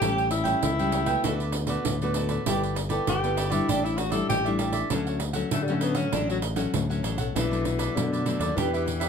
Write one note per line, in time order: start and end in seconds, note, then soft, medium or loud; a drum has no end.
0.00 0.54 A1 loud
0.00 0.60 A2 medium
0.00 0.43 G3 medium
0.00 0.43 C#4 medium
0.00 0.43 E4 medium
0.00 0.30 G4 loud
0.00 0.16 G4 medium
0.00 0.16 A4 medium
0.00 0.16 C#5 medium
0.00 0.16 G5 medium
0.00 pandeiro medium
0.18 0.29 A4 soft
0.18 0.30 C#5 soft
0.18 0.30 G5 soft
0.18 pandeiro soft
0.30 0.60 E4 medium
0.30 muted cavaquinho stroke soft
0.30 pandeiro medium
0.44 0.72 G3 medium
0.44 0.72 C#4 medium
0.44 0.73 E4 medium
0.44 0.76 A4 medium
0.44 0.76 C#5 medium
0.44 0.75 G5 medium
0.44 pandeiro medium
0.63 1.15 C#2 loud
0.63 1.22 E3 medium
0.63 1.51 E4 medium
0.63 pandeiro medium
0.79 1.04 G3 medium
0.79 1.05 C#4 medium
0.79 1.05 E4 medium
0.79 0.91 A4 soft
0.79 0.92 C#5 soft
0.79 0.92 G5 soft
0.79 pandeiro soft
0.92 1.07 G4 soft
0.92 1.07 A4 soft
0.92 1.06 C#5 medium
0.92 1.05 G5 medium
0.92 pandeiro medium
1.06 1.64 A3 medium
1.06 1.64 B3 medium
1.06 1.64 F#4 medium
1.06 1.23 A4 medium
1.06 1.22 C#5 medium
1.06 1.22 G5 medium
1.06 pandeiro medium
1.24 1.76 D2 loud
1.24 1.83 D3 medium
1.24 1.39 F#4 medium
1.24 1.39 A4 medium
1.24 1.39 B4 medium
1.24 1.39 D5 medium
1.24 pandeiro medium
1.40 1.53 A4 soft
1.40 1.53 B4 soft
1.40 1.53 D5 soft
1.40 pandeiro soft
1.52 muted cavaquinho stroke soft
1.52 pandeiro medium
1.67 1.95 A3 medium
1.67 1.95 B3 medium
1.67 1.95 F#4 medium
1.67 1.99 A4 medium
1.67 1.99 B4 medium
1.67 1.99 D5 medium
1.67 pandeiro medium
1.85 2.37 D2 medium
1.85 2.44 A2 medium
1.85 pandeiro medium
2.02 2.42 A3 medium
2.02 2.43 B3 medium
2.02 2.43 F#4 medium
2.02 2.14 A4 soft
2.02 2.15 B4 soft
2.02 2.15 D5 soft
2.02 pandeiro soft
2.14 2.30 F#4 soft
2.14 2.29 A4 medium
2.14 2.28 B4 soft
2.14 2.28 D5 medium
2.14 pandeiro medium
2.29 2.45 A4 medium
2.29 2.45 B4 medium
2.29 2.44 D5 medium
2.29 pandeiro medium
2.46 2.98 G1 medium
2.46 3.05 G3 medium
2.46 2.76 B3 medium
2.46 2.61 E4 medium
2.46 2.76 E4 medium
2.46 2.61 G4 medium
2.46 2.76 A4 medium
2.46 2.61 B4 medium
2.46 2.62 D5 medium
2.46 pandeiro medium
2.63 2.74 G4 soft
2.63 2.75 B4 soft
2.63 2.75 D5 medium
2.63 pandeiro soft
2.75 muted cavaquinho stroke soft
2.75 pandeiro medium
2.89 3.17 B3 medium
2.89 3.18 E4 medium
2.89 3.21 G4 medium
2.89 3.18 A4 medium
2.89 3.20 B4 medium
2.89 3.20 D5 medium
2.89 pandeiro medium
3.07 3.60 G1 loud
3.07 3.66 D3 medium
3.07 3.53 G4 medium
3.07 pandeiro medium
3.23 3.49 B3 medium
3.23 3.50 E4 medium
3.23 3.36 G4 soft
3.23 3.50 A4 medium
3.23 3.37 B4 soft
3.23 3.37 D5 soft
3.23 pandeiro soft
3.37 3.52 E4 soft
3.37 3.50 G4 soft
3.37 3.50 B4 medium
3.37 3.49 D5 medium
3.37 pandeiro medium
3.50 4.09 G3 medium
3.50 4.09 D4 medium
3.50 3.71 E4 medium
3.50 4.09 E4 medium
3.50 3.67 G4 medium
3.50 3.66 B4 medium
3.50 3.66 D5 medium
3.50 pandeiro medium
3.68 4.21 A1 loud
3.68 4.27 A2 medium
3.68 3.86 D4 medium
3.68 3.83 G4 medium
3.68 3.83 A4 medium
3.68 3.82 D5 medium
3.68 3.83 E5 medium
3.68 pandeiro medium
3.84 3.99 E4 medium
3.84 3.96 A4 soft
3.84 3.96 D5 medium
3.84 3.96 E5 soft
3.84 pandeiro soft
3.97 4.13 F#4 medium
3.97 muted cavaquinho stroke soft
3.97 pandeiro medium
4.10 4.39 G3 medium
4.10 4.40 D4 medium
4.10 4.40 E4 medium
4.10 4.28 A4 loud
4.10 4.43 A4 medium
4.10 4.42 D5 medium
4.10 4.42 E5 medium
4.10 pandeiro medium
4.29 4.82 A1 medium
4.29 4.88 E3 medium
4.29 4.48 G4 medium
4.29 pandeiro medium
4.44 4.87 G3 medium
4.44 4.87 D4 medium
4.44 4.87 E4 medium
4.44 4.58 A4 soft
4.44 4.58 D5 soft
4.44 4.58 E5 soft
4.44 pandeiro soft
4.58 4.73 G4 medium
4.58 4.73 A4 medium
4.58 4.71 D5 medium
4.58 4.72 E5 soft
4.58 pandeiro medium
4.72 4.89 A4 medium
4.72 4.88 D5 medium
4.72 4.89 E5 medium
4.72 pandeiro medium
4.90 5.43 D2 medium
4.90 5.49 D3 medium
4.90 5.20 F#3 medium
4.90 5.20 A3 medium
4.90 5.20 C#4 medium
4.90 5.05 D4 medium
4.90 5.05 A4 medium
4.90 5.05 C#5 medium
4.90 5.05 F#5 medium
4.90 pandeiro medium
5.06 5.19 A4 soft
5.06 5.19 C#5 soft
5.06 5.19 F#5 medium
5.06 pandeiro soft
5.20 muted cavaquinho stroke soft
5.20 pandeiro medium
5.33 5.62 F#3 medium
5.33 5.62 A3 medium
5.33 5.62 C#4 medium
5.33 5.65 A4 medium
5.33 5.65 C#5 medium
5.33 5.64 F#5 medium
5.33 pandeiro medium
5.51 6.10 A2 medium
5.51 6.04 D3 loud
5.51 5.65 A3 medium
5.51 pandeiro medium
5.63 5.75 G3 medium
5.68 5.94 F#3 medium
5.68 5.94 A3 medium
5.68 5.94 C#4 medium
5.68 5.80 A4 soft
5.68 5.81 C#5 soft
5.68 5.81 F#5 soft
5.68 pandeiro soft
5.74 5.83 A3 medium
5.81 5.97 B3 medium
5.81 5.96 D4 medium
5.81 5.95 A4 medium
5.81 5.95 C#5 medium
5.81 5.94 F#5 medium
5.81 pandeiro medium
5.95 6.07 F#3 medium
5.95 6.07 A3 medium
5.95 6.15 C#4 medium
5.95 6.07 C#4 medium
5.95 6.11 A4 medium
5.95 6.11 C#5 medium
5.95 6.10 F#5 medium
5.95 pandeiro medium
6.12 6.65 A1 loud
6.12 6.71 D3 medium
6.12 6.42 F#3 medium
6.12 6.42 A3 medium
6.12 6.42 C#4 medium
6.12 6.27 D4 medium
6.12 6.29 D4 medium
6.12 6.28 A4 medium
6.12 6.28 C#5 medium
6.12 6.28 F#5 medium
6.12 pandeiro medium
6.29 6.39 F#3 medium
6.29 6.41 A4 soft
6.29 6.41 C#5 soft
6.29 6.42 F#5 medium
6.29 pandeiro soft
6.42 muted cavaquinho stroke soft
6.42 pandeiro medium
6.56 6.83 F#3 medium
6.56 6.83 A3 medium
6.56 6.83 C#4 medium
6.56 6.88 A4 medium
6.56 6.87 C#5 medium
6.56 6.87 F#5 medium
6.56 pandeiro medium
6.74 7.00 D2 medium
6.74 7.32 A2 medium
6.74 pandeiro medium
6.90 7.30 F#3 medium
6.90 7.31 A3 medium
6.90 7.31 C#4 medium
6.90 7.02 A4 soft
6.90 7.03 C#5 soft
6.90 7.03 F#5 medium
6.90 pandeiro soft
7.03 7.17 A1 medium
7.03 7.18 D4 soft
7.03 7.18 A4 medium
7.03 7.18 C#5 medium
7.03 7.17 F#5 medium
7.03 pandeiro medium
7.18 7.32 B1 medium
7.18 7.34 A4 medium
7.18 7.33 C#5 medium
7.18 7.33 F#5 medium
7.18 pandeiro medium
7.35 7.87 B1 medium
7.35 7.93 B2 medium
7.35 7.97 E3 medium
7.35 7.46 F#3 medium
7.35 7.46 A3 medium
7.35 7.49 D4 medium
7.35 7.46 D4 medium
7.35 7.50 A4 medium
7.35 7.50 B4 medium
7.35 7.50 D5 medium
7.35 pandeiro medium
7.51 7.92 F#3 medium
7.51 7.92 A3 medium
7.51 7.92 D4 medium
7.51 7.64 A4 soft
7.51 7.64 B4 soft
7.51 7.64 D5 soft
7.51 pandeiro soft
7.64 muted cavaquinho stroke soft
7.64 pandeiro medium
7.78 8.10 A4 medium
7.78 8.09 B4 medium
7.78 8.09 D5 medium
7.78 pandeiro medium
7.96 8.54 F#2 medium
7.96 8.35 B2 medium
7.96 8.59 D3 medium
7.96 8.22 F#3 medium
7.96 8.22 A3 soft
7.96 8.22 D4 medium
7.96 pandeiro medium
8.13 8.25 A4 soft
8.13 8.26 B4 soft
8.13 8.26 D5 soft
8.13 pandeiro soft
8.25 8.54 F#3 medium
8.25 8.54 A3 medium
8.25 8.40 D4 soft
8.25 8.55 D4 medium
8.25 8.40 A4 medium
8.25 8.39 B4 medium
8.25 8.38 D5 medium
8.25 pandeiro medium
8.39 8.53 D#2 medium
8.39 8.55 A4 medium
8.39 8.55 B4 medium
8.39 8.55 D5 medium
8.39 pandeiro medium
8.57 9.09 E2 medium
8.57 9.09 E3 medium
8.57 8.67 B3 medium
8.57 8.71 D4 medium
8.57 8.67 D4 medium
8.57 8.71 G4 medium
8.57 8.67 G4 medium
8.57 8.71 B4 medium
8.57 8.72 E5 medium
8.57 pandeiro medium
8.74 9.09 B3 medium
8.74 9.09 D4 medium
8.74 9.09 G4 medium
8.74 8.85 G4 soft
8.74 8.85 B4 soft
8.74 8.85 E5 soft
8.74 pandeiro soft
8.86 muted cavaquinho stroke soft
8.86 pandeiro medium
9.00 9.09 G4 medium
9.00 9.09 B4 medium
9.00 9.09 E5 medium
9.00 pandeiro medium